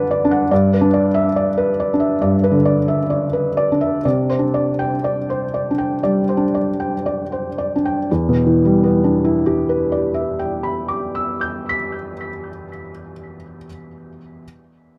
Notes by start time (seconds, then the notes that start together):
Already playing: D3 D4 B4 D5 F#5
0.11 D5
0.25 D4
0.31 F#5
0.51 G2 D5
0.74 B4
0.81 D4
0.94 D5
1.14 E5
1.36 D5
1.58 B4
1.80 D5
1.94 D4
2.00 E5
2.22 G2 D5
2.44 B4
2.52 D3
2.65 D5
2.88 E5
3.10 D5
3.33 B4
3.57 D5
3.72 D4
3.81 E5
4.05 C3 D5
4.30 C5
4.39 D4
4.54 D5
4.79 G5
5.04 D5
5.30 C5
5.54 D5
5.71 D4
5.78 G5
6.03 G3 D5
6.29 C5
6.37 D4
6.55 D5
6.80 G5
7.06 D5
7.32 C5
7.58 D5
7.76 D4
7.85 G5
8.11 E2
8.29 B2
8.46 E3
8.65 G3
8.84 B3
9.04 D4
9.24 E4
9.46 G4
9.69 B4
9.92 D5
10.14 E5
10.39 G5
10.63 B5
10.88 D6
11.15 E6
11.41 G6
11.69 B6